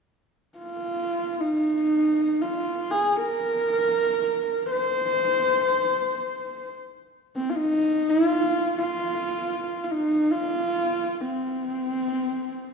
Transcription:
0.58 1.41 F4 medium
1.40 2.43 D#4 medium
2.41 2.93 F4 medium
2.91 3.18 G#4 medium
3.17 4.70 A#4 medium
4.71 6.74 C5 medium
7.35 7.51 C4 medium
7.50 7.57 F4 medium
7.56 8.11 D#4 medium
8.10 8.77 F4 medium
8.78 9.84 F4 medium
9.84 9.93 F4 medium
9.91 10.33 D#4 medium
10.31 11.22 F4 medium
11.20 12.73 C4 medium

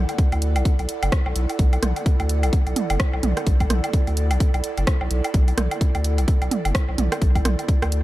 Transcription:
0.00 8.03 E4 medium
0.00 8.03 A4 loud
0.00 8.03 D5 medium
0.00 8.03 F#5 medium
0.09 closed hi-hat soft
0.09 low woodblock soft
0.18 kick loud
0.18 closed hi-hat soft
0.32 0.57 D2 loud
0.32 closed hi-hat soft
0.32 low woodblock medium
0.42 closed hi-hat medium
0.56 0.63 B1 medium
0.56 closed hi-hat soft
0.56 low woodblock medium
0.65 kick loud
0.65 closed hi-hat medium
0.79 0.87 B1 medium
0.79 closed hi-hat soft
0.79 low woodblock soft
0.89 closed hi-hat medium
1.03 1.10 F#1 medium
1.03 closed hi-hat soft
1.03 low woodblock medium
1.12 kick loud
1.12 cross-stick loud
1.12 closed hi-hat medium
1.26 1.34 B1 medium
1.26 low woodblock medium
1.36 1.47 B1 loud
1.36 closed hi-hat loud
1.49 closed hi-hat soft
1.49 low woodblock soft
1.59 1.78 B1 loud
1.59 kick loud
1.59 closed hi-hat medium
1.73 closed hi-hat soft
1.73 low woodblock medium
1.83 1.93 B1 loud
1.83 cross-stick medium
1.83 closed hi-hat loud
1.83 mid tom medium
1.96 closed hi-hat soft
1.96 low woodblock soft
2.06 kick loud
2.06 closed hi-hat medium
2.20 2.45 D2 loud
2.20 closed hi-hat soft
2.20 low woodblock medium
2.29 closed hi-hat loud
2.43 2.51 B1 medium
2.43 closed hi-hat soft
2.43 low woodblock medium
2.53 kick loud
2.53 closed hi-hat soft
2.67 2.74 B1 medium
2.67 closed hi-hat soft
2.67 low woodblock soft
2.76 closed hi-hat medium
2.76 mid tom medium
2.90 2.98 F#1 medium
2.90 closed hi-hat soft
2.90 low woodblock medium
3.00 kick loud
3.00 cross-stick loud
3.00 closed hi-hat medium
3.13 3.21 B1 medium
3.13 low woodblock medium
3.23 3.34 B1 loud
3.23 closed hi-hat medium
3.23 mid tom loud
3.37 cross-stick medium
3.37 closed hi-hat soft
3.37 low woodblock soft
3.47 3.66 B1 loud
3.47 kick loud
3.47 closed hi-hat medium
3.60 kick medium
3.60 closed hi-hat soft
3.60 low woodblock medium
3.70 3.81 B1 loud
3.70 cross-stick medium
3.70 closed hi-hat medium
3.70 mid tom medium
3.84 closed hi-hat soft
3.84 low woodblock medium
3.93 kick loud
3.93 closed hi-hat medium
4.07 4.32 D2 loud
4.07 closed hi-hat soft
4.07 low woodblock soft
4.17 closed hi-hat medium
4.31 4.38 B1 medium
4.31 closed hi-hat soft
4.31 low woodblock medium
4.40 kick loud
4.40 closed hi-hat medium
4.54 4.62 B1 loud
4.54 closed hi-hat soft
4.54 low woodblock medium
4.64 closed hi-hat medium
4.78 4.85 F#1 medium
4.78 closed hi-hat soft
4.78 low woodblock soft
4.87 kick loud
4.87 cross-stick loud
4.87 closed hi-hat medium
5.01 5.09 B1 medium
5.01 low woodblock medium
5.11 5.22 B1 loud
5.11 closed hi-hat medium
5.24 closed hi-hat soft
5.24 low woodblock medium
5.34 5.53 B1 loud
5.34 kick loud
5.34 closed hi-hat medium
5.48 closed hi-hat soft
5.48 low woodblock soft
5.58 5.68 B1 loud
5.58 cross-stick medium
5.58 closed hi-hat medium
5.58 mid tom medium
5.71 closed hi-hat soft
5.71 low woodblock medium
5.81 kick loud
5.81 closed hi-hat medium
5.95 6.20 D2 loud
5.95 closed hi-hat soft
5.95 low woodblock medium
6.04 closed hi-hat medium
6.18 6.26 B1 medium
6.18 closed hi-hat soft
6.18 low woodblock soft
6.28 kick loud
6.28 closed hi-hat medium
6.42 6.49 B1 medium
6.42 closed hi-hat soft
6.42 low woodblock medium
6.51 closed hi-hat medium
6.51 mid tom medium
6.65 6.73 F#1 medium
6.65 closed hi-hat soft
6.65 low woodblock medium
6.75 kick loud
6.75 cross-stick loud
6.75 closed hi-hat medium
6.89 6.96 B1 medium
6.89 low woodblock soft
6.98 7.09 B1 loud
6.98 closed hi-hat medium
6.98 mid tom loud
7.12 cross-stick medium
7.12 closed hi-hat soft
7.12 low woodblock medium
7.22 7.41 B1 loud
7.22 kick loud
7.22 closed hi-hat medium
7.35 kick medium
7.35 closed hi-hat soft
7.35 low woodblock medium
7.45 7.56 B1 medium
7.45 cross-stick medium
7.45 closed hi-hat medium
7.45 mid tom medium
7.59 closed hi-hat soft
7.59 low woodblock soft
7.68 kick loud
7.68 closed hi-hat medium
7.82 8.03 D2 loud
7.82 cross-stick medium
7.82 closed hi-hat soft
7.82 low woodblock medium
7.92 closed hi-hat medium

